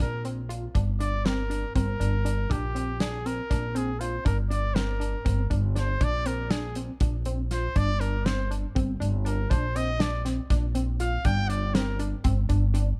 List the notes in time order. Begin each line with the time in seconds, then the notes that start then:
0.00 A#1 D4 A#4, kick, closed hi-hat
0.25 C4, closed hi-hat
0.49 F4, closed hi-hat
0.75 G1 D4, kick, closed hi-hat
1.00 D4 D5, closed hi-hat
1.25 C4 A#4, snare, closed hi-hat
1.50 D4, closed hi-hat
1.75 G1 C4 A#4, kick, closed hi-hat
2.00 G1 D4, closed hi-hat
2.25 D4, closed hi-hat
2.50 A#1 D4 G4, kick, closed hi-hat
2.75 C4, closed hi-hat
3.00 D4 G#4, snare, closed hi-hat
3.26 C4 A#4, closed hi-hat
3.50 A#1 D4, kick, snare, closed hi-hat
3.75 C4 G#4, closed hi-hat
4.00 F4 C5, closed hi-hat
4.25 G1 D4 A#4, kick, closed hi-hat
4.50 D4 D5, closed hi-hat
4.75 C4 A#4, snare, closed hi-hat
5.00 D4, closed hi-hat
5.25 G1 C4, kick, closed hi-hat
5.50 G1 D4, kick, closed hi-hat
5.75 D4 C5, snare, closed hi-hat
6.01 A#1 D4 D5, kick, closed hi-hat
6.26 C4 A#4, closed hi-hat
6.51 D4 G#4, snare, closed hi-hat
6.75 C4, closed hi-hat
7.00 A#1 D4, kick, closed hi-hat
7.25 C4, closed hi-hat
7.51 F4 C5, snare, closed hi-hat
7.76 G1 D4 D5, kick, closed hi-hat
8.01 D4 A#4, closed hi-hat
8.26 C4 C5, snare, closed hi-hat
8.51 D4, closed hi-hat
8.75 G1 C4, kick, closed hi-hat
9.00 G1 D4, closed hi-hat
9.25 D4 A#4, closed hi-hat
9.50 A#1 D4 C5, kick, closed hi-hat
9.76 C4 D#5, closed hi-hat
10.00 D4 D5, snare, closed hi-hat
10.25 C4, snare, closed hi-hat
10.50 A#1 D4, kick, snare, closed hi-hat
10.75 C4, closed hi-hat
11.00 F4 F5, closed hi-hat
11.25 G1 D4 G5, kick, closed hi-hat
11.49 D4 D5, closed hi-hat
11.74 C4 A#4, snare, closed hi-hat
11.99 D4, closed hi-hat
12.24 G1 C4, kick, closed hi-hat
12.49 G1 D4, kick, closed hi-hat
12.74 D4, closed hi-hat